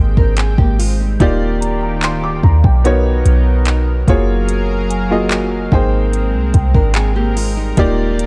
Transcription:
Already playing: G#1 G#3 A#3 C4 D#4 G4 G#4 C5 G5
0.17 G#1 D4 A#4, kick
0.37 C4 G#4, clap, closed hi-hat
0.58 G#1 A#3 G4, kick
0.79 G#3 F4, open hi-hat
0.99 G3 D#4
1.20 D#1 D#3 A#3 D#4 F4 G4 D5, kick, closed hi-hat
1.61 A#5, closed hi-hat
1.83 A#5
2.02 D1 C6, clap, closed hi-hat
2.24 D6
2.43 D#2 A#5, kick
2.64 B1 G5, kick
2.84 B3 D#4 F#4 A#4 C#5, closed hi-hat
3.26 B1, closed hi-hat
3.65 clap, closed hi-hat
4.08 F#1 F#3 A#3 F4 F#4 G#4 A#4 C#5 F5, kick, closed hi-hat
4.49 closed hi-hat
4.90 G#5, closed hi-hat
5.10 A#3 F4 F#4 G#4 D#5
5.31 clap, closed hi-hat
5.72 G#1 G#3 A#3 C4 D#4 G#4 A#4 C5 G5, kick
6.13 closed hi-hat
6.34 C2
6.54 C2 G5, kick, closed hi-hat
6.74 G#1 D4 A#4, kick
6.94 C4 G#4, clap, closed hi-hat
7.16 A#3 G4
7.36 G#3 F4, open hi-hat
7.57 G3 D#4
7.77 D#1 D#3 A#3 D#4 F4 G4 D5, kick, closed hi-hat
8.19 closed hi-hat

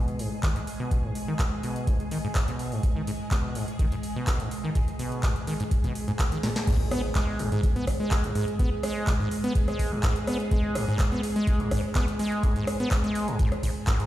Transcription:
Already playing: B2 G#3 G#4
0.08 closed hi-hat
0.19 G#2, open hi-hat
0.43 D#3, kick, clap, closed hi-hat
0.56 G#2, closed hi-hat
0.67 open hi-hat
0.80 B2
0.91 kick, closed hi-hat
1.04 G#2
1.15 open hi-hat
1.28 D#3
1.39 G#2, kick, clap, closed hi-hat
1.63 B2, open hi-hat
1.76 closed hi-hat
1.87 G#2, kick, closed hi-hat
2.00 closed hi-hat
2.11 D#3, open hi-hat
2.24 G#2
2.35 kick, clap, closed hi-hat
2.48 B2, closed hi-hat
2.59 open hi-hat
2.72 G#2, open hi-hat
2.83 kick, closed hi-hat
2.96 D#3
3.07 G#2, open hi-hat
3.31 B2, kick, clap, closed hi-hat
3.55 G#2, open hi-hat
3.68 closed hi-hat
3.79 D#3, kick, closed hi-hat
3.92 G#2, closed hi-hat
4.03 open hi-hat
4.16 B2
4.27 kick, clap, closed hi-hat
4.40 G#2, closed hi-hat
4.51 open hi-hat
4.64 D#3
4.75 G#2, kick, closed hi-hat
4.88 closed hi-hat
4.99 B2, open hi-hat
5.12 closed hi-hat
5.23 G#2, kick, clap, closed hi-hat
5.36 closed hi-hat
5.47 D#3, open hi-hat
5.60 G#2, closed hi-hat
5.71 kick, closed hi-hat
5.84 B2, kick, closed hi-hat
5.95 open hi-hat
6.08 G#2, closed hi-hat
6.19 kick, clap, closed hi-hat
6.32 D#3, closed hi-hat
6.43 A#2, snare, open hi-hat
6.56 snare, open hi-hat
6.67 G#2 G#3 G#4, kick, closed hi-hat, crash, impact
6.91 B3, cross-stick, open hi-hat
7.15 G#3, kick, clap, closed hi-hat
7.39 G#2, open hi-hat
7.52 G#2, closed hi-hat
7.63 kick, closed hi-hat
7.76 B3, closed hi-hat
7.87 kick, cross-stick, open hi-hat
8.00 G#3
8.11 kick, clap, closed hi-hat
8.24 G#2, closed hi-hat
8.35 G#2, open hi-hat
8.48 closed hi-hat
8.59 B3, kick, closed hi-hat
8.83 G#3, cross-stick, open hi-hat
9.07 G#2, kick, clap, closed hi-hat
9.20 G#2
9.31 open hi-hat
9.44 B3, closed hi-hat
9.55 kick, closed hi-hat
9.68 G#3, cross-stick, closed hi-hat
9.79 kick, open hi-hat
9.92 G#2
10.03 G#2, kick, clap, closed hi-hat
10.16 closed hi-hat
10.27 B3, cross-stick, open hi-hat
10.40 closed hi-hat
10.51 G#3, kick, closed hi-hat
10.75 G#2, cross-stick, open hi-hat
10.88 G#2
10.99 kick, clap, closed hi-hat
11.12 B3
11.23 open hi-hat
11.36 G#3, closed hi-hat
11.47 kick, closed hi-hat
11.60 G#2, closed hi-hat
11.71 G#2, kick, cross-stick, open hi-hat
11.95 B3, kick, clap, closed hi-hat
12.08 closed hi-hat
12.19 G#3, open hi-hat
12.32 closed hi-hat
12.43 G#2, kick, closed hi-hat
12.56 G#2, closed hi-hat
12.67 cross-stick, open hi-hat
12.80 B3, closed hi-hat
12.91 kick, clap, closed hi-hat
13.04 G#3, closed hi-hat
13.15 open hi-hat
13.28 G#2, closed hi-hat
13.39 G#2, kick, closed hi-hat
13.52 cross-stick, closed hi-hat
13.63 G#2, kick, open hi-hat
13.87 G#2, kick, clap, closed hi-hat
14.00 closed hi-hat

